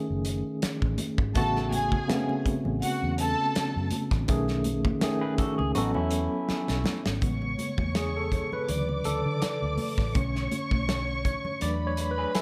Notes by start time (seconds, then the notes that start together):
Already playing: D#3 A3 C#4 G#4
0.10 F#1
0.25 closed hi-hat
0.62 muted fingered electric bass stroke, snare, closed hi-hat
0.82 A1, kick
0.98 closed hi-hat, high conga
1.18 G#1, kick
1.35 A1 C3 A3 B3 F#4 A4 A5, kick, closed hi-hat, muted conga, low conga
1.41 C#3
1.56 snare
1.71 G#4 G#5, closed hi-hat, high conga
1.92 kick, high conga
2.08 C#3 A3 B3 C4, snare, closed hi-hat, muted conga, high conga
2.17 C#4
2.29 muted conga
2.46 muted fingered electric bass stroke, kick, closed hi-hat, low conga
2.65 A1, low conga
2.82 F#4 F#5, closed hi-hat
3.03 E2
3.18 A4 A5, closed hi-hat
3.55 muted fingered electric bass stroke, snare, closed hi-hat
3.76 F#2
3.91 closed hi-hat, high conga
4.11 A1, kick, snare
4.28 B1 D#3 A3 C#4 G#4, kick, closed hi-hat, low conga
4.48 snare
4.64 closed hi-hat, high conga
4.85 kick, high conga
5.01 D#3 A3 C#4 G#4, snare, closed hi-hat, muted conga, high conga
5.21 G#4 B4
5.38 F#4 A4, muted fingered electric bass stroke, kick, closed hi-hat, low conga
5.58 C#2 G#4, low conga
5.75 A1 F#3 B3 C#4 D#4 F#4 A4, closed hi-hat, muted conga
5.94 E2 C#4 E4, muted conga
6.11 closed hi-hat
6.49 muted fingered electric bass stroke, snare, muted conga
6.68 B1, snare
6.84 snare, high conga
7.06 G#1, snare
7.21 A1 C#3 G#3 B3 C#5 C#6, kick, closed hi-hat, muted conga
7.42 muted conga
7.58 closed hi-hat, high conga
7.78 E2, kick, high conga
7.95 G#4, snare, closed hi-hat, high conga
8.17 A4
8.32 kick, closed hi-hat, low conga
8.52 B4, low conga
8.68 D2 C#3 E3 F#3 D5 D6, closed hi-hat, muted conga
8.89 muted conga
9.04 D2 A4, closed hi-hat
9.26 D3
9.42 muted fingered electric bass stroke, snare, closed hi-hat, muted conga
9.62 D2
9.77 open hi-hat, high conga
9.98 A1, kick, snare
10.15 B1 D3 A3 C#4 C#5 C#6, kick, closed hi-hat, muted conga
10.36 snare
10.52 closed hi-hat, high conga
10.71 B1, kick, high conga
10.89 snare, closed hi-hat, high conga
11.25 C#5, kick, closed hi-hat, low conga
11.45 low conga
11.60 E2 F#3 A3 D4 B4 D5 B5, closed hi-hat
11.87 C#5
11.97 closed hi-hat
12.11 B4
12.18 G#4 B4
12.35 E4 G#4 A4, snare, closed hi-hat, muted conga